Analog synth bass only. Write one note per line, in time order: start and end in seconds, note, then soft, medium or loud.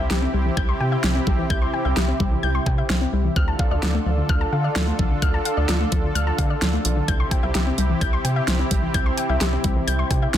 0.10 0.27 C2 loud
0.34 0.50 C2 loud
0.57 0.73 C2 loud
0.80 0.97 C3 medium
1.04 1.20 C2 medium
1.27 1.43 B1 medium
1.50 1.66 C2 loud
1.85 1.93 C2 loud
1.97 2.13 C2 loud
2.20 2.36 C2 loud
2.43 2.59 C2 loud
2.66 2.83 C3 medium
2.90 3.06 C2 loud
3.13 3.29 C2 medium
3.36 3.52 D2 loud
3.71 3.79 D2 loud
3.83 3.99 D2 loud
4.06 4.22 D2 loud
4.29 4.46 D2 loud
4.52 4.69 D3 loud
4.76 4.92 D2 medium
4.99 5.15 C2 medium
5.22 5.39 D2 loud
5.57 5.65 D2 loud
5.69 5.85 D2 loud
5.92 6.08 D2 loud
6.15 6.31 D2 loud
6.39 6.55 D3 medium
6.62 6.78 D2 medium
6.85 7.01 B1 medium
7.08 7.25 C2 loud
7.43 7.51 C2 loud
7.55 7.71 C2 loud
7.78 7.94 C2 loud
8.01 8.18 C2 loud
8.25 8.41 C3 loud
8.48 8.64 C2 medium
8.71 8.87 B1 medium
8.94 9.11 C2 loud
9.29 9.37 C2 loud
9.41 9.57 C2 loud
9.64 9.80 C2 loud
9.87 10.04 C2 loud
10.11 10.27 C3 medium
10.34 10.37 C2 loud